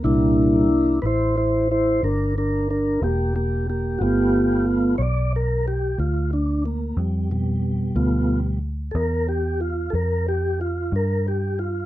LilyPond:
<<
  \new Staff \with { instrumentName = "Tonewheel organ" } { \time 12/8 \key c \major \tempo 4. = 61 <bes, g>4 r8 <e' b' c''>8 <e' c''>8 <e' c''>8 <d' bes'>8 <d' bes'>8 <d' bes'>8 <bes g'>8 <bes g'>8 <bes g'>8 | <fis' g'>4 r8 <cis'' d''>8 bes'8 g'8 f'8 d'8 bes8 g8 <b, g>4~ | <b, g>4 r8 <a' bes'>8 g'8 f'8 <a' bes'>8 g'8 f'8 bes'8 g'8 f'8 | }
  \new Staff \with { instrumentName = "Tonewheel organ" } { \time 12/8 \key c \major <bes d' e'>4. r1 r8 | <a b f'>4. r1 r8 | <a b f'>8 r1 r4. | }
  \new Staff \with { instrumentName = "Fingered electric bass" } { \clef bass \time 12/8 \key c \major c,4. a,,4. g,,4. e,,4. | g,,4. b,,4. d,4. f,4. | d,4. e,4. f,4. g,4. | }
>>